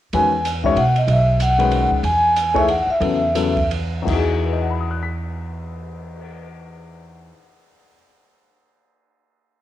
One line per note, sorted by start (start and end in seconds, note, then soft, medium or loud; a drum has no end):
0.13 0.72 E2 medium
0.13 0.31 D#3 medium
0.13 0.31 G#3 soft
0.13 0.31 C#4 soft
0.13 0.31 F#4 soft
0.13 0.31 B4 medium
0.13 0.43 G#5 medium
0.13 ride medium
0.45 hi-hat pedal medium
0.45 ride medium
0.64 0.75 D#3 medium
0.64 0.75 G#3 medium
0.64 0.76 C#4 medium
0.64 0.76 F#4 medium
0.64 0.76 C#5 medium
0.64 0.69 E5 medium
0.64 kick medium
0.76 1.06 B2 medium
0.76 0.97 F#5 medium
0.76 ride medium
0.96 1.09 D#5 medium
0.96 ride soft
1.07 1.87 B1 medium
1.07 1.39 E5 medium
1.07 ride medium
1.40 1.89 F#5 medium
1.40 hi-hat pedal medium
1.40 ride medium
1.58 2.01 D#3 medium
1.58 2.01 G#3 medium
1.58 2.01 C#4 medium
1.58 2.01 F#4 medium
1.58 2.01 B4 medium
1.58 ride soft
1.71 ride medium
1.91 kick medium
2.03 2.84 E2 medium
2.03 2.57 G#5 medium
2.03 ride medium
2.36 hi-hat pedal medium
2.36 ride medium
2.54 2.66 E3 medium
2.54 2.66 A3 medium
2.54 2.66 D#4 medium
2.54 2.67 G#4 medium
2.54 2.66 C#5 medium
2.54 2.68 E5 medium
2.54 kick medium
2.54 ride soft
2.68 2.78 F#5 medium
2.68 ride medium
2.87 3.67 E5 medium
2.87 muted upright bass stroke soft
3.00 4.02 E2 medium
3.00 3.19 C#3 medium
3.00 3.19 F#3 soft
3.00 3.19 B3 medium
3.00 3.19 E4 soft
3.00 3.19 A4 medium
3.00 ride medium
3.34 3.54 C#3 medium
3.34 3.54 F#3 medium
3.34 3.54 B3 medium
3.34 3.54 E4 medium
3.34 3.54 A4 medium
3.34 hi-hat pedal medium
3.34 ride medium
3.56 kick medium
3.56 ride soft
3.71 ride medium
4.02 7.30 E2 medium
4.02 7.33 E3 medium
4.07 7.30 E2 medium
4.07 7.36 D#4 medium
4.07 kick medium
4.07 crash medium
4.11 7.39 F#4 medium
4.11 7.42 G#4 medium
4.31 cymbal swell soft
4.45 7.69 B4 soft
4.53 7.76 D#5 soft
4.61 7.85 F#5 soft
4.70 7.90 B5 soft
4.80 7.95 D#6 soft
4.91 8.00 F#6 soft
5.03 8.06 B6 soft